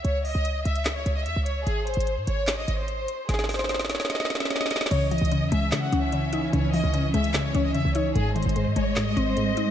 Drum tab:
CC |------------------------------------------------------------------------------------------------|------------------------------------------------------------------------------------------------|------------------------------------------------------------------------------------------------|x-----------------------------------------------------------------------------------------------|
HH |x-----------o-----------x-----------x-----x-----x-----------x-----------x-----------x-----------|x-----------x---x---x---x-----------x-----------x-----------x-----------x-----------x-----------|x-----------o-----------x-----------x-----------x-----------x--x--x--x--x-----x-----x-----------|x-----------x---x---x---x-----------x-----------x-----------x-----------x-----------x-----------|
CP |------------------------------------------------x-----------------------------------------------|------------------------------------------------x-----------------------------------------------|------------------------------------------------------------------------------------------------|------------------------------------------------x-----------------------------------------------|
SD |------------------------------------------------o-----------------------------------------------|------------------------------------------------o-----------------------------------------------|o--o--o--o--o--o--o--o--o--o--o--o--o--o--o--o--o--o--o--o--o--o--o--o--o--o--o--o--o--o--o--o--|------------------------------------------------o-----------------------------------------------|

CC |------------------------------------------------------------------------------------------------|------------------------------------------------------------------------------------------------|
HH |x-----------o-----------x-----------x-----x-----x-----------x-----------x-----------x-----------|x-----------x---x---x---x-----------x-----------x-----------x-----------x-----------x-----------|
CP |------------------------------------------------x-----------------------------------------------|------------------------------------------------x-----------------------------------------------|
SD |------------------------------------------------o-----------------------------------------------|------------------------------------------------o-----------------------------------------------|